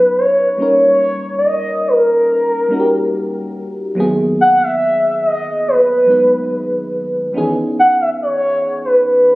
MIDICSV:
0, 0, Header, 1, 3, 480
1, 0, Start_track
1, 0, Tempo, 845070
1, 336, Time_signature, 4, 2, 24, 8
1, 5312, End_track
2, 0, Start_track
2, 0, Title_t, "Soft synth lead"
2, 0, Program_c, 0, 80
2, 0, Note_on_c, 0, 71, 102
2, 105, Note_on_c, 0, 73, 91
2, 113, Note_off_c, 0, 71, 0
2, 341, Note_off_c, 0, 73, 0
2, 346, Note_on_c, 0, 73, 100
2, 788, Note_on_c, 0, 74, 71
2, 796, Note_off_c, 0, 73, 0
2, 826, Note_on_c, 0, 75, 97
2, 834, Note_off_c, 0, 74, 0
2, 1067, Note_on_c, 0, 70, 92
2, 1076, Note_off_c, 0, 75, 0
2, 2022, Note_off_c, 0, 70, 0
2, 2504, Note_on_c, 0, 78, 103
2, 2626, Note_on_c, 0, 76, 104
2, 2634, Note_off_c, 0, 78, 0
2, 2986, Note_on_c, 0, 75, 91
2, 2995, Note_off_c, 0, 76, 0
2, 3227, Note_on_c, 0, 71, 87
2, 3236, Note_off_c, 0, 75, 0
2, 3942, Note_off_c, 0, 71, 0
2, 4426, Note_on_c, 0, 78, 106
2, 4533, Note_off_c, 0, 78, 0
2, 4546, Note_on_c, 0, 76, 93
2, 4598, Note_off_c, 0, 76, 0
2, 4667, Note_on_c, 0, 73, 103
2, 4999, Note_off_c, 0, 73, 0
2, 5025, Note_on_c, 0, 71, 82
2, 5133, Note_off_c, 0, 71, 0
2, 5145, Note_on_c, 0, 71, 86
2, 5312, Note_off_c, 0, 71, 0
2, 5312, End_track
3, 0, Start_track
3, 0, Title_t, "FM electric piano"
3, 0, Program_c, 1, 5
3, 0, Control_c, 1, 64, 127
3, 0, Note_on_c, 1, 54, 71
3, 0, Note_on_c, 1, 59, 64
3, 0, Note_on_c, 1, 61, 65
3, 0, Note_on_c, 1, 63, 61
3, 0, Note_on_c, 1, 71, 81
3, 106, Note_off_c, 1, 54, 0
3, 109, Note_off_c, 1, 59, 0
3, 113, Note_off_c, 1, 61, 0
3, 117, Note_off_c, 1, 63, 0
3, 120, Note_off_c, 1, 71, 0
3, 325, Note_on_c, 1, 55, 69
3, 331, Note_on_c, 1, 58, 64
3, 338, Note_on_c, 1, 61, 69
3, 344, Control_c, 1, 64, 0
3, 345, Note_on_c, 1, 63, 66
3, 352, Note_on_c, 1, 70, 81
3, 450, Control_c, 1, 64, 127
3, 992, Note_off_c, 1, 55, 0
3, 995, Note_off_c, 1, 58, 0
3, 998, Note_off_c, 1, 61, 0
3, 1002, Note_off_c, 1, 63, 0
3, 1006, Note_off_c, 1, 70, 0
3, 1525, Note_on_c, 1, 55, 68
3, 1532, Note_on_c, 1, 58, 65
3, 1538, Note_on_c, 1, 61, 65
3, 1546, Note_on_c, 1, 63, 62
3, 1553, Note_on_c, 1, 66, 59
3, 1581, Note_off_c, 1, 66, 0
3, 1590, Note_on_c, 1, 67, 80
3, 2027, Note_off_c, 1, 55, 0
3, 2030, Note_off_c, 1, 58, 0
3, 2033, Note_off_c, 1, 61, 0
3, 2037, Note_off_c, 1, 63, 0
3, 2059, Note_off_c, 1, 67, 0
3, 2244, Note_on_c, 1, 54, 81
3, 2251, Note_on_c, 1, 58, 80
3, 2258, Note_on_c, 1, 59, 79
3, 2264, Control_c, 1, 64, 0
3, 2265, Note_on_c, 1, 51, 76
3, 2272, Note_on_c, 1, 68, 96
3, 2371, Control_c, 1, 64, 127
3, 2912, Note_off_c, 1, 54, 0
3, 2915, Note_off_c, 1, 58, 0
3, 2919, Note_off_c, 1, 59, 0
3, 2922, Note_off_c, 1, 51, 0
3, 2926, Note_off_c, 1, 68, 0
3, 3444, Note_on_c, 1, 54, 68
3, 3450, Note_on_c, 1, 56, 64
3, 3457, Note_on_c, 1, 59, 64
3, 3465, Note_on_c, 1, 63, 63
3, 3471, Note_on_c, 1, 71, 74
3, 3946, Note_off_c, 1, 54, 0
3, 3949, Note_off_c, 1, 56, 0
3, 3953, Note_off_c, 1, 59, 0
3, 3957, Note_off_c, 1, 63, 0
3, 3960, Note_off_c, 1, 71, 0
3, 4163, Note_on_c, 1, 51, 64
3, 4170, Note_on_c, 1, 59, 77
3, 4177, Note_on_c, 1, 61, 77
3, 4184, Note_on_c, 1, 63, 78
3, 4185, Control_c, 1, 64, 0
3, 4190, Note_on_c, 1, 68, 92
3, 4200, Note_on_c, 1, 52, 81
3, 4206, Note_off_c, 1, 51, 0
3, 4289, Control_c, 1, 64, 127
3, 4835, Note_off_c, 1, 59, 0
3, 4838, Note_off_c, 1, 61, 0
3, 4841, Note_off_c, 1, 63, 0
3, 4845, Note_off_c, 1, 68, 0
3, 4850, Note_off_c, 1, 52, 0
3, 5312, End_track
0, 0, End_of_file